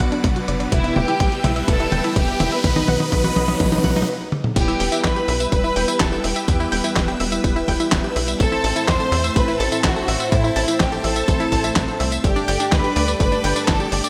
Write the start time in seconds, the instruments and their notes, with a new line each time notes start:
Already playing: analog polysynth B2 F#3 B3 D4 B4, violin section F#4 F#5, string machine B4 D5 F#5 D6, riser
0.00 analog synth bass B1, synth arpeggio sound F#5, kick
0.12 synth arpeggio sound D4, closed hi-hat
0.24 analog synth bass B1, kick, closed hi-hat, mid tom
0.36 synth arpeggio sound F#4, closed hi-hat
0.48 analog synth bass F#1, synth arpeggio sound D5, closed hi-hat
0.60 synth arpeggio sound D5, closed hi-hat
0.72 analog synth bass E1, analog polysynth G3 B3 E4 B4, violin section E4 E5, string machine E5 G5 E6, kick, closed hi-hat, mid tom
0.84 synth arpeggio sound E4, closed hi-hat
0.96 analog synth bass E1, violin section G4 G5, synth arpeggio sound G5, mid tom
1.08 synth arpeggio sound E4, closed hi-hat
1.20 analog synth bass B1, kick, closed hi-hat, mid tom
1.32 synth arpeggio sound G4, closed hi-hat
1.44 analog synth bass B1, synth arpeggio sound E5, closed hi-hat, mid tom
1.56 analog polysynth G3 B3 E4 B4, synth arpeggio sound E5, closed hi-hat
1.68 analog synth bass E1, violin section A4 A5, kick, closed hi-hat, mid tom
1.80 synth arpeggio sound E4, closed hi-hat
1.92 analog synth bass E1, synth arpeggio sound G5, closed hi-hat, mid tom
2.04 synth arpeggio sound E4, closed hi-hat
2.16 analog synth bass E1, violin section G4 G5, kick, closed hi-hat, mid tom
2.28 synth arpeggio sound G4, closed hi-hat
2.40 analog synth bass E1, synth arpeggio sound E5, closed hi-hat, mid tom
2.52 violin section B4 B5, synth arpeggio sound E5, closed hi-hat
2.64 analog synth bass B1, analog polysynth B2 F#3 B3 D#4 B4, violin section B4 B5, string machine D#5 F#5 D#6, kick, closed hi-hat, mid tom
2.76 synth arpeggio sound D#4, closed hi-hat, mid tom
2.88 analog synth bass B1, synth arpeggio sound F#5, mid tom
3.00 synth arpeggio sound D#4, closed hi-hat, mid tom
3.12 analog synth bass B1, kick, closed hi-hat, mid tom
3.24 synth arpeggio sound F#4, closed hi-hat, mid tom
3.36 analog synth bass B1, synth arpeggio sound D#5, closed hi-hat, mid tom
3.48 analog polysynth B2 F#3 B3 D#4 B4, synth arpeggio sound D#5, closed hi-hat, mid tom
3.60 analog synth bass B1, kick, closed hi-hat, mid tom
3.66 mid tom
3.72 synth arpeggio sound D#4, closed hi-hat, mid tom
3.78 mid tom
3.84 analog synth bass B1, synth arpeggio sound F#5, kick, closed hi-hat, mid tom
3.90 mid tom
3.96 synth arpeggio sound D#4, closed hi-hat, mid tom
4.02 mid tom
4.32 high tom
4.44 mid tom
4.56 analog synth bass E1, analog polysynth G3 B3 E4 B4, violin section G4 G5, string machine B4 E5 G5 E6, kick, closed hi-hat, crash, tambourine
4.68 synth arpeggio sound E4, tambourine
4.80 analog synth bass E1, synth arpeggio sound G5, open hi-hat
4.92 synth arpeggio sound E4, closed hi-hat, tambourine
5.04 analog synth bass B1, violin section B4 B5, kick, snare, clap, closed hi-hat, tambourine
5.16 synth arpeggio sound G4, closed hi-hat, tambourine
5.28 analog synth bass B1, synth arpeggio sound E5, open hi-hat
5.40 analog polysynth G3 B3 E4 B4, synth arpeggio sound E5, closed hi-hat, tambourine
5.52 analog synth bass E1, violin section B4 B5, kick, closed hi-hat, tambourine
5.64 synth arpeggio sound E4, tambourine
5.76 analog synth bass E1, synth arpeggio sound G5, open hi-hat
5.88 synth arpeggio sound E4, closed hi-hat, tambourine
6.00 analog synth bass E1, violin section A4 A5, kick, snare, clap, closed hi-hat, tambourine
6.12 synth arpeggio sound G4, tambourine
6.24 analog synth bass E1, violin section G4 G5, synth arpeggio sound E5, open hi-hat
6.36 synth arpeggio sound E5, closed hi-hat, tambourine
6.48 analog synth bass E2, analog polysynth G3 B3 E4 B4, kick, closed hi-hat, tambourine
6.60 synth arpeggio sound E4, tambourine
6.72 analog synth bass E1, synth arpeggio sound G5, open hi-hat
6.84 synth arpeggio sound E4, closed hi-hat, tambourine
6.96 analog synth bass E1, kick, snare, clap, closed hi-hat, tambourine
7.08 synth arpeggio sound G4, closed hi-hat, tambourine
7.20 analog synth bass E1, synth arpeggio sound E5, open hi-hat
7.32 analog polysynth G3 B3 E4 B4, synth arpeggio sound E5, closed hi-hat, tambourine
7.44 analog synth bass E1, kick, closed hi-hat, tambourine
7.56 synth arpeggio sound E4, tambourine
7.68 analog synth bass E1, synth arpeggio sound G5, kick, open hi-hat
7.80 synth arpeggio sound E4, closed hi-hat, tambourine
7.92 analog synth bass E1, kick, snare, clap, closed hi-hat, tambourine
8.04 synth arpeggio sound G4, tambourine
8.16 analog synth bass B1, synth arpeggio sound E5, open hi-hat
8.28 synth arpeggio sound E5, closed hi-hat, tambourine
8.40 analog synth bass A1, analog polysynth A2 A3 C4 E4 C5, violin section A4 A5, string machine C5 A5, kick, closed hi-hat, tambourine
8.52 synth arpeggio sound E4, tambourine
8.64 analog synth bass A1, synth arpeggio sound A5, open hi-hat
8.76 synth arpeggio sound E4, closed hi-hat, tambourine
8.88 analog synth bass E2, violin section C5 C6, kick, snare, clap, closed hi-hat, tambourine
9.00 synth arpeggio sound A4, closed hi-hat, tambourine
9.12 analog synth bass E2, synth arpeggio sound E5, open hi-hat
9.24 analog polysynth A2 A3 C4 E4 C5, synth arpeggio sound E5, closed hi-hat, tambourine
9.36 analog synth bass A1, violin section B4 B5, kick, closed hi-hat, tambourine
9.48 synth arpeggio sound E4, tambourine
9.60 analog synth bass A1, violin section A4 A5, synth arpeggio sound A5, open hi-hat
9.72 synth arpeggio sound E4, closed hi-hat, tambourine
9.84 analog synth bass A1, violin section F#4 F#5, kick, snare, clap, closed hi-hat, tambourine
9.96 synth arpeggio sound A4, tambourine
10.08 analog synth bass A1, synth arpeggio sound E5, open hi-hat
10.20 synth arpeggio sound E5, closed hi-hat, tambourine
10.32 analog polysynth A2 A3 C4 E4 C5, analog synth bass A2, violin section E4 E5, kick, closed hi-hat, tambourine
10.44 synth arpeggio sound E4, tambourine
10.56 analog synth bass A1, synth arpeggio sound A5, open hi-hat
10.68 synth arpeggio sound E4, closed hi-hat, tambourine
10.80 analog synth bass A1, violin section G4 G5, kick, snare, clap, closed hi-hat, tambourine
10.92 synth arpeggio sound A4, closed hi-hat, tambourine
11.04 analog synth bass A1, violin section A4 A5, synth arpeggio sound E5, open hi-hat
11.16 analog polysynth A2 A3 C4 E4 C5, synth arpeggio sound E5, closed hi-hat, tambourine
11.28 analog synth bass A1, kick, closed hi-hat, tambourine
11.40 synth arpeggio sound E4, closed hi-hat, tambourine
11.52 analog synth bass A1, synth arpeggio sound A5, kick, open hi-hat
11.64 synth arpeggio sound E4, closed hi-hat, tambourine
11.76 analog synth bass C2, kick, snare, clap, closed hi-hat, tambourine
11.88 synth arpeggio sound A4, tambourine
12.00 analog synth bass C2, synth arpeggio sound E5, open hi-hat
12.12 synth arpeggio sound E5, closed hi-hat, tambourine
12.24 analog synth bass G1, analog polysynth G2 A3 D4 G4 D5, violin section G4 G5, string machine A4 D5 G5 D6, kick, closed hi-hat, tambourine
12.36 synth arpeggio sound D4, tambourine
12.48 analog synth bass G1, synth arpeggio sound G5, open hi-hat
12.60 synth arpeggio sound D4, closed hi-hat, tambourine
12.72 analog synth bass D2, violin section B4 B5, kick, snare, clap, closed hi-hat, tambourine
12.84 synth arpeggio sound G4, closed hi-hat, tambourine
12.96 analog synth bass D2, synth arpeggio sound D5, open hi-hat
13.08 analog polysynth G2 A3 D4 G4 D5, synth arpeggio sound D5, closed hi-hat, tambourine
13.20 analog synth bass G1, violin section B4 B5, kick, closed hi-hat, tambourine
13.32 synth arpeggio sound D4, tambourine
13.44 analog synth bass G1, synth arpeggio sound G5, open hi-hat
13.56 synth arpeggio sound D4, closed hi-hat, tambourine
13.68 analog synth bass G1, violin section A4 A5, kick, snare, clap, closed hi-hat, tambourine
13.80 synth arpeggio sound G4, tambourine
13.92 analog synth bass G1, violin section G4 G5, synth arpeggio sound D5, open hi-hat
14.04 synth arpeggio sound D5, closed hi-hat, tambourine